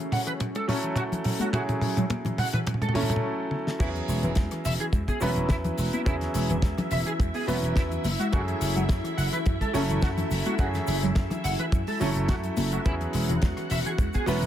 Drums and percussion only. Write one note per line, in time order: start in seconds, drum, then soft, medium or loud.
0.12 open hi-hat loud
0.12 mid tom medium
0.27 closed hi-hat medium
0.40 kick loud
0.40 closed hi-hat medium
0.40 mid tom medium
0.55 kick medium
0.55 closed hi-hat medium
0.69 open hi-hat loud
0.69 mid tom medium
0.83 closed hi-hat medium
0.96 kick loud
0.96 closed hi-hat medium
0.96 mid tom medium
1.12 closed hi-hat medium
1.12 low conga medium
1.24 open hi-hat loud
1.24 mid tom medium
1.40 closed hi-hat medium
1.40 high conga medium
1.53 kick loud
1.53 closed hi-hat medium
1.53 mid tom loud
1.69 closed hi-hat soft
1.69 mid tom medium
1.81 open hi-hat loud
1.81 mid tom medium
1.97 closed hi-hat soft
1.97 mid tom medium
2.10 kick loud
2.10 closed hi-hat medium
2.10 mid tom medium
2.10 high conga medium
2.25 closed hi-hat medium
2.25 mid tom medium
2.25 low conga medium
2.38 open hi-hat loud
2.38 mid tom loud
2.54 closed hi-hat medium
2.54 mid tom medium
2.67 kick loud
2.67 closed hi-hat medium
2.67 mid tom loud
2.74 mid tom medium
2.82 closed hi-hat medium
2.82 mid tom medium
2.89 mid tom medium
2.95 open hi-hat loud
2.95 mid tom medium
2.95 high conga medium
3.03 mid tom medium
3.10 closed hi-hat medium
3.10 mid tom loud
3.16 mid tom loud
3.51 high tom medium
3.67 snare medium
3.80 kick loud
3.80 closed hi-hat medium
3.80 crash loud
3.80 shaker medium
3.96 closed hi-hat medium
4.08 open hi-hat loud
4.08 shaker loud
4.23 closed hi-hat soft
4.23 shaker soft
4.35 kick loud
4.35 snare loud
4.35 closed hi-hat medium
4.35 shaker medium
4.51 cross-stick medium
4.51 closed hi-hat medium
4.65 open hi-hat loud
4.65 shaker loud
4.80 closed hi-hat medium
4.80 shaker soft
4.93 kick loud
4.93 closed hi-hat medium
4.93 shaker medium
5.08 kick medium
5.08 closed hi-hat medium
5.08 shaker soft
5.21 cross-stick medium
5.21 open hi-hat loud
5.21 shaker medium
5.36 closed hi-hat medium
5.36 shaker soft
5.49 kick loud
5.49 snare loud
5.49 closed hi-hat medium
5.49 shaker medium
5.64 closed hi-hat medium
5.64 low conga medium
5.64 shaker soft
5.78 open hi-hat loud
5.78 shaker loud
5.93 closed hi-hat medium
5.93 high conga medium
5.93 shaker soft
6.06 kick loud
6.06 closed hi-hat medium
6.06 shaker soft
6.21 snare soft
6.21 closed hi-hat medium
6.34 open hi-hat loud
6.34 shaker loud
6.49 closed hi-hat medium
6.49 shaker soft
6.62 kick loud
6.62 snare loud
6.62 closed hi-hat medium
6.62 shaker soft
6.78 cross-stick medium
6.78 closed hi-hat medium
6.78 low conga loud
6.91 open hi-hat loud
6.91 shaker medium
7.06 closed hi-hat medium
7.06 shaker soft
7.20 kick loud
7.20 closed hi-hat medium
7.20 shaker medium
7.34 open hi-hat medium
7.34 shaker soft
7.48 open hi-hat loud
7.48 high conga medium
7.48 shaker loud
7.64 closed hi-hat medium
7.64 shaker soft
7.76 kick loud
7.76 snare loud
7.76 closed hi-hat medium
7.76 shaker medium
7.92 closed hi-hat medium
7.92 shaker soft
8.04 open hi-hat loud
8.04 high conga medium
8.04 shaker medium
8.20 closed hi-hat medium
8.20 shaker soft
8.33 kick loud
8.33 closed hi-hat medium
8.33 shaker medium
8.48 closed hi-hat medium
8.61 open hi-hat loud
8.61 shaker loud
8.76 closed hi-hat medium
8.76 shaker soft
8.89 kick loud
8.89 snare loud
8.89 closed hi-hat medium
8.89 shaker medium
9.04 cross-stick medium
9.04 closed hi-hat medium
9.18 open hi-hat loud
9.18 shaker medium
9.33 closed hi-hat soft
9.33 shaker soft
9.46 kick loud
9.46 closed hi-hat medium
9.46 shaker soft
9.61 kick medium
9.61 closed hi-hat medium
9.61 shaker soft
9.74 cross-stick medium
9.74 open hi-hat loud
9.74 shaker medium
9.90 closed hi-hat medium
9.90 shaker soft
10.02 kick loud
10.02 snare loud
10.02 closed hi-hat medium
10.02 shaker medium
10.17 closed hi-hat medium
10.17 low conga medium
10.17 shaker soft
10.31 open hi-hat loud
10.31 shaker medium
10.46 closed hi-hat medium
10.46 high conga medium
10.46 shaker soft
10.59 kick loud
10.59 closed hi-hat medium
10.59 shaker soft
10.74 snare soft
10.74 closed hi-hat medium
10.74 shaker soft
10.87 open hi-hat loud
10.87 shaker medium
11.03 closed hi-hat medium
11.03 shaker soft
11.15 kick loud
11.15 snare loud
11.15 closed hi-hat medium
11.15 shaker soft
11.30 cross-stick medium
11.30 closed hi-hat medium
11.30 low conga medium
11.30 shaker soft
11.44 open hi-hat loud
11.44 shaker medium
11.59 closed hi-hat medium
11.59 shaker soft
11.72 kick loud
11.72 closed hi-hat medium
11.72 shaker medium
11.87 open hi-hat medium
11.87 shaker soft
12.01 open hi-hat loud
12.01 high conga medium
12.01 shaker medium
12.15 closed hi-hat medium
12.15 shaker soft
12.28 kick loud
12.28 snare loud
12.28 closed hi-hat medium
12.28 shaker medium
12.43 closed hi-hat medium
12.43 shaker soft
12.57 open hi-hat loud
12.57 high conga loud
12.57 shaker medium
12.72 closed hi-hat medium
12.72 shaker soft
12.85 kick loud
12.85 closed hi-hat medium
12.85 shaker medium
13.01 closed hi-hat medium
13.13 open hi-hat loud
13.13 shaker medium
13.29 closed hi-hat medium
13.29 shaker soft
13.42 kick loud
13.42 snare loud
13.42 closed hi-hat medium
13.42 shaker soft
13.57 cross-stick medium
13.57 closed hi-hat medium
13.70 open hi-hat loud
13.70 shaker medium
13.86 closed hi-hat medium
13.86 shaker soft
13.98 kick loud
13.98 closed hi-hat medium
13.98 shaker medium
14.13 kick medium
14.13 closed hi-hat medium
14.13 shaker soft
14.26 cross-stick medium
14.26 open hi-hat loud
14.26 shaker medium
14.42 closed hi-hat medium
14.42 shaker soft